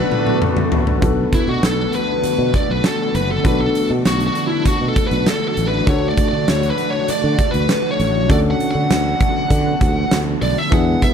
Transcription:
Already playing: D3 A3 B3 D4 F#4 A4 B4
0.12 mid tom
0.27 mid tom
0.42 mid tom
0.57 mid tom
0.72 floor tom
0.87 floor tom
1.01 B1 D3 A3 B3 D4 F#4 A4, kick, closed hi-hat
1.33 E4, kick, closed hi-hat
1.47 B2 F#4
1.63 B1 A4, snare, closed hi-hat
1.93 B4, closed hi-hat
2.24 muted fretless electric bass stroke, closed hi-hat
2.38 B2
2.54 D5, kick, closed hi-hat
2.69 B1 B4
2.84 A4, snare, closed hi-hat
3.14 F#1 B4, closed hi-hat
3.31 A4
3.44 B1 B3 D4 F#4 A4 B4, kick, closed hi-hat
3.61 A4
3.75 closed hi-hat
3.90 B2
4.05 B1 F#4, snare, closed hi-hat
4.20 closed hi-hat
4.27 F#4
4.35 closed hi-hat
4.47 E4
4.66 F#4, muted fretless electric bass stroke, kick, closed hi-hat
4.81 B2
4.88 A4
4.96 kick, closed hi-hat
5.07 B1 B4, closed hi-hat
5.26 A4, snare, closed hi-hat
5.48 A4
5.57 A1, closed hi-hat
5.68 B4
5.86 D2 D3 A3 D4 F#4 A4 C#5, kick, closed hi-hat
6.09 D5
6.17 kick, closed hi-hat
6.29 D3 D5
6.48 D2 C#5, snare, closed hi-hat
6.63 closed hi-hat
6.70 B4
6.78 closed hi-hat
6.90 C#5
7.08 D5, muted fretless electric bass stroke, closed hi-hat
7.24 D3
7.39 kick, closed hi-hat
7.51 D2 B4, closed hi-hat
7.69 snare, closed hi-hat
7.91 C#5
7.99 A1, closed hi-hat
8.29 D2 B3 C#4 D4 F#4 A4 D5, kick, closed hi-hat
8.51 F#5
8.60 closed hi-hat
8.71 D3 F#5
8.90 D2, snare, closed hi-hat
9.20 kick, closed hi-hat
9.50 D3, kick, closed hi-hat
9.81 D2, kick, closed hi-hat
10.11 D2, snare, closed hi-hat
10.42 B1 D5, open hi-hat
10.58 E5
10.71 E2 G#3 B3 D4 E4 G#4 F#5, kick, closed hi-hat
11.02 E5, kick, closed hi-hat

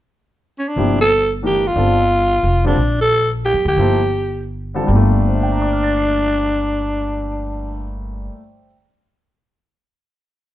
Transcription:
0.59 C#4
0.68 D4
0.76 G1 C3 F3 A#3 E4 G4
1.01 A4
1.42 E3 A3 D4 G4 A#4
1.67 F4
1.75 G1 D3 G3 C4 F4 A4
2.43 F1
2.64 D3 G3 C4 D4 F4 A4
2.76 A#1
3.01 A4
3.45 G4
3.54 F2
3.65 D2 G4
3.77 G1 F3 A#3 E4 A4 C5
4.74 D3 G3 C4 F4 A4
4.83 G2 G3
4.88 G1 A#3 D4 F4
4.96 A3
5.27 C5
5.34 E5
5.43 G5
5.52 A#5
5.62 D6
5.73 F6
5.84 A6
5.97 C7

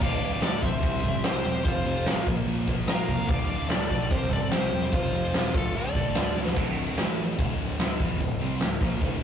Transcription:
0.01 D1 D2 A2 D3 D5 F5, kick, crash
0.21 D1 D2 A2 D3
0.42 D1 D2 A2 D3 A4 D5, snare, open hi-hat
0.62 D1 D2 A2 D3 C5 E5, kick
0.83 C2 C3 G3 C4, kick, open hi-hat
0.93 snare
1.04 G1 C3 G3 C4, kick
1.24 C2 C3 G3 C4 G4 C5, snare, open hi-hat
1.44 E1 C3 G3 C4
1.65 F1 F2 C3 F3 F4 C5, kick, open hi-hat
1.85 F1 F2 C3 F3
2.05 A1 F2 C3 F3, snare, open hi-hat
2.26 A#1 A#2 F3 A#3, kick
2.46 A#1 A#2 F3 A#3, open hi-hat
2.68 A#2 F3 A#3, kick
2.87 A#1 A#2 F3 A#3 A#4 F5, snare, open hi-hat
3.08 C2 A#2 F3 A#3, kick
3.29 D1 D2 A2 D3 D5 F5, kick, open hi-hat
3.49 D1 D2 A2 D3
3.68 D1 D2 A2 D3 A4 D5, snare, open hi-hat
3.90 B1 D2 A2 D3 A4 D5, kick
4.10 C2 C3 G3 C4 G4 C5, kick, open hi-hat
4.21 snare
4.30 G1 C3 G3 C4 A4 D5, kick
4.51 C2 C3 G3 C4 G4 C5, snare, open hi-hat
4.72 E1 C3 G3 C4
4.92 F1 F2 C3 F3 F4 C5, kick, open hi-hat
5.12 F1 F2 C3 F3
5.33 E1 F2 C3 F3, snare, open hi-hat
5.53 D1 D2 A2 D3 F4 A4, kick
5.73 D1 D2 A2 D3 A4, open hi-hat
5.77 D5
5.95 D2 A2 D3, kick
6.15 D1 D2 A2 D3, snare, open hi-hat
6.35 D1 D2 A2 D3, snare
6.46 snare
6.56 D1 D2 A2 D3, kick, crash
6.78 open hi-hat
6.96 A1 A2 E3 A3, snare, open hi-hat
7.09 snare
7.19 open hi-hat
7.37 D1 D2 A2 D3, kick, open hi-hat
7.59 open hi-hat
7.80 snare, open hi-hat
7.98 E1 E2 B2 E3, kick, open hi-hat
8.19 D1 D2 A2, kick, open hi-hat
8.39 C2 C3 G3 C4, open hi-hat
8.59 D1 D2 A2, snare, open hi-hat
8.81 A#1 A#2 F3 A#3, kick, open hi-hat
8.91 snare
9.01 D1 D2 A2 D3, kick, open hi-hat

